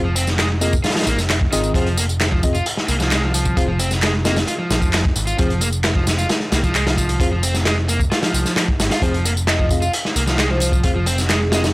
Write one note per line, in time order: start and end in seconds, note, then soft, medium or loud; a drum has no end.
0.00 0.78 F1 loud
0.04 0.15 F3 medium
0.16 0.27 C4 loud
0.16 closed hi-hat medium
0.16 tambourine medium
0.27 snare soft
0.27 tambourine soft
0.38 0.48 G#3 medium
0.38 snare loud
0.38 clap loud
0.38 closed hi-hat medium
0.38 tambourine soft
0.61 0.72 A#3 medium
0.61 0.74 C4 medium
0.61 0.74 F4 medium
0.61 0.74 G#4 medium
0.61 0.74 D#5 medium
0.61 closed hi-hat medium
0.61 tambourine medium
0.73 kick loud
0.73 tambourine soft
0.84 0.90 F4 medium
0.84 snare medium
0.84 closed hi-hat medium
0.84 tambourine soft
0.90 snare medium
0.90 closed hi-hat medium
0.95 1.05 F3 medium
0.95 snare medium
0.95 closed hi-hat medium
1.01 snare loud
1.01 closed hi-hat medium
1.06 1.19 A#1 medium
1.06 1.17 A#3 medium
1.06 closed hi-hat medium
1.06 tambourine medium
1.18 1.47 F1 medium
1.18 snare soft
1.18 tambourine soft
1.30 snare loud
1.30 clap loud
1.30 closed hi-hat medium
1.30 tambourine soft
1.41 kick medium
1.52 1.68 G#1 medium
1.52 1.61 D#3 loud
1.52 1.72 C4 loud
1.52 1.72 F4 medium
1.52 1.72 G#4 medium
1.52 1.72 D#5 loud
1.52 closed hi-hat medium
1.52 tambourine medium
1.64 1.74 D#3 medium
1.64 tambourine soft
1.74 2.60 F1 loud
1.74 1.97 F3 loud
1.74 1.87 C4 loud
1.74 1.87 F4 medium
1.74 1.87 G#4 medium
1.74 1.87 C5 loud
1.74 kick loud
1.74 closed hi-hat medium
1.74 tambourine soft
1.86 closed hi-hat soft
1.97 2.03 A#3 medium
1.97 closed hi-hat medium
1.97 tambourine medium
2.09 tambourine soft
2.21 snare loud
2.21 clap loud
2.21 closed hi-hat medium
2.21 tambourine soft
2.31 2.41 F3 medium
2.31 kick medium
2.43 2.56 C4 medium
2.43 2.56 F4 medium
2.43 2.56 G#4 medium
2.43 2.56 D#5 medium
2.43 kick loud
2.43 closed hi-hat medium
2.43 tambourine medium
2.55 2.64 F4 medium
2.55 tambourine soft
2.66 closed hi-hat medium
2.66 tambourine soft
2.77 snare medium
2.88 3.51 C2 medium
2.88 2.94 A#3 medium
2.88 closed hi-hat medium
2.88 tambourine medium
3.00 3.11 F3 loud
3.00 snare medium
3.00 tambourine soft
3.11 3.22 G#3 medium
3.11 snare loud
3.11 clap loud
3.11 closed hi-hat loud
3.11 tambourine soft
3.23 3.32 F3 medium
3.34 3.56 F3 medium
3.34 closed hi-hat medium
3.34 tambourine medium
3.45 kick loud
3.45 tambourine soft
3.57 4.42 F1 loud
3.57 3.69 C4 medium
3.57 3.62 F4 medium
3.57 3.69 F4 medium
3.57 3.69 G#4 medium
3.57 3.69 C5 medium
3.57 kick loud
3.57 closed hi-hat medium
3.57 tambourine soft
3.68 3.78 F3 medium
3.79 3.90 C4 loud
3.79 closed hi-hat medium
3.79 tambourine medium
3.91 snare soft
3.91 tambourine soft
4.02 4.11 G#3 medium
4.02 snare loud
4.02 clap loud
4.02 closed hi-hat medium
4.02 tambourine soft
4.25 4.36 A#3 medium
4.25 4.37 C4 medium
4.25 4.37 F4 medium
4.25 4.37 G#4 medium
4.25 4.37 D#5 medium
4.25 snare loud
4.25 closed hi-hat medium
4.25 tambourine medium
4.36 snare loud
4.36 closed hi-hat medium
4.36 tambourine soft
4.47 4.53 F4 medium
4.47 closed hi-hat medium
4.47 tambourine soft
4.59 5.03 F3 medium
4.71 4.82 A#1 medium
4.71 snare loud
4.71 closed hi-hat medium
4.71 tambourine medium
4.82 5.10 F1 medium
4.82 kick loud
4.82 tambourine soft
4.93 snare loud
4.93 clap loud
4.93 closed hi-hat medium
4.93 tambourine soft
5.05 kick loud
5.16 5.31 G#1 medium
5.16 closed hi-hat medium
5.16 tambourine medium
5.27 5.37 F4 medium
5.27 tambourine soft
5.38 6.24 F1 loud
5.38 5.60 F3 loud
5.38 5.51 C4 medium
5.38 5.51 F4 medium
5.38 5.51 G#4 medium
5.38 5.51 C5 loud
5.38 kick loud
5.38 closed hi-hat medium
5.38 tambourine soft
5.50 closed hi-hat soft
5.61 5.67 A#3 medium
5.61 closed hi-hat medium
5.61 tambourine medium
5.73 tambourine soft
5.83 snare loud
5.83 clap loud
5.83 closed hi-hat medium
5.83 tambourine soft
5.95 6.05 F3 medium
5.95 kick loud
6.07 snare loud
6.07 closed hi-hat medium
6.07 tambourine medium
6.18 6.27 F4 medium
6.18 tambourine soft
6.29 snare loud
6.29 closed hi-hat medium
6.29 tambourine soft
6.40 snare soft
6.52 7.15 C2 loud
6.52 6.58 A#3 medium
6.52 snare loud
6.52 closed hi-hat medium
6.52 tambourine medium
6.64 6.74 F3 loud
6.64 kick medium
6.64 tambourine soft
6.75 6.85 G#3 medium
6.75 clap loud
6.75 closed hi-hat medium
6.75 tambourine soft
6.87 6.96 F3 medium
6.87 snare loud
6.87 closed hi-hat medium
6.98 7.19 F3 medium
6.98 kick medium
6.98 tambourine medium
7.09 closed hi-hat medium
7.09 tambourine soft
7.20 8.05 F1 medium
7.20 7.33 C4 medium
7.20 7.26 F4 medium
7.20 7.33 F4 medium
7.20 7.33 G#4 medium
7.20 7.33 C5 medium
7.20 kick loud
7.20 closed hi-hat medium
7.20 tambourine soft
7.32 7.42 F3 medium
7.43 7.54 C4 loud
7.43 closed hi-hat medium
7.43 tambourine medium
7.54 snare soft
7.54 tambourine soft
7.65 7.75 G#3 medium
7.65 snare loud
7.65 clap loud
7.65 closed hi-hat medium
7.65 tambourine soft
7.88 8.00 A#3 medium
7.88 closed hi-hat medium
7.88 tambourine medium
8.00 kick loud
8.00 tambourine soft
8.11 8.17 F4 medium
8.11 snare loud
8.11 closed hi-hat medium
8.11 tambourine soft
8.23 8.67 F3 medium
8.23 snare loud
8.23 closed hi-hat medium
8.34 8.42 C2 medium
8.34 closed hi-hat medium
8.34 tambourine medium
8.46 snare soft
8.46 tambourine soft
8.56 snare loud
8.56 clap loud
8.56 closed hi-hat medium
8.56 tambourine soft
8.68 kick medium
8.80 8.87 G#1 loud
8.80 snare loud
8.80 closed hi-hat medium
8.80 tambourine medium
8.91 9.01 F4 medium
8.91 snare loud
8.91 closed hi-hat medium
8.91 tambourine soft
9.02 9.87 F1 loud
9.02 9.24 F3 loud
9.02 9.15 C4 medium
9.02 9.15 F4 medium
9.02 9.15 G#4 medium
9.02 9.15 C5 loud
9.02 kick loud
9.02 closed hi-hat medium
9.02 tambourine soft
9.14 closed hi-hat soft
9.25 9.31 A#3 medium
9.25 closed hi-hat medium
9.25 tambourine medium
9.37 tambourine soft
9.47 9.60 D#5 medium
9.47 snare loud
9.47 clap loud
9.47 closed hi-hat medium
9.47 tambourine soft
9.59 9.68 F3 medium
9.59 kick loud
9.69 9.83 C4 medium
9.69 9.83 F4 medium
9.69 9.83 G#4 medium
9.69 9.83 D#5 medium
9.69 9.83 F5 medium
9.69 kick medium
9.69 closed hi-hat medium
9.69 tambourine medium
9.82 9.91 F4 medium
9.82 tambourine soft
9.93 closed hi-hat medium
9.93 tambourine soft
10.05 snare soft
10.16 10.78 C2 medium
10.16 10.22 A#3 medium
10.16 closed hi-hat medium
10.16 tambourine medium
10.27 10.38 F3 loud
10.27 snare medium
10.27 tambourine soft
10.38 10.49 G#3 medium
10.38 snare loud
10.38 clap loud
10.38 closed hi-hat medium
10.38 tambourine soft
10.50 10.59 F3 medium
10.50 10.62 C5 medium
10.60 10.83 F3 medium
10.60 closed hi-hat medium
10.60 tambourine medium
10.72 kick loud
10.72 tambourine soft
10.83 11.69 F1 loud
10.83 10.96 C4 medium
10.83 10.90 F4 medium
10.83 10.96 F4 medium
10.83 10.96 G#4 medium
10.83 10.96 C5 medium
10.83 kick loud
10.83 closed hi-hat medium
10.83 tambourine soft
10.96 11.06 F3 medium
11.06 11.18 C4 loud
11.06 closed hi-hat medium
11.06 tambourine medium
11.18 snare soft
11.18 tambourine soft
11.29 11.39 G#3 medium
11.29 11.37 G#4 medium
11.29 snare loud
11.29 clap loud
11.29 closed hi-hat loud
11.29 tambourine soft
11.41 11.48 G#4 medium
11.52 11.61 G#3 loud
11.52 11.65 C4 medium
11.52 11.65 F4 medium
11.52 11.65 G#4 medium
11.52 11.65 D#5 medium
11.52 snare loud
11.52 closed hi-hat medium
11.52 tambourine medium
11.64 snare loud
11.64 closed hi-hat medium
11.64 tambourine soft